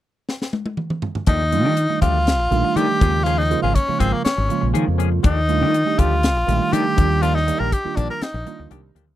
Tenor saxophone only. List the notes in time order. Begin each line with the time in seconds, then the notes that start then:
1.28 D#4
2.01 F4
2.76 G4
3.24 F4
3.38 D#4
3.62 F4
3.75 C#4
3.99 C4
4.13 A#3
4.25 C#4
5.25 D#4
5.99 F4
6.73 G4
7.22 F4
7.35 D#4
7.60 A#4
7.73 G4
7.96 D4
8.10 A#4
8.23 D#4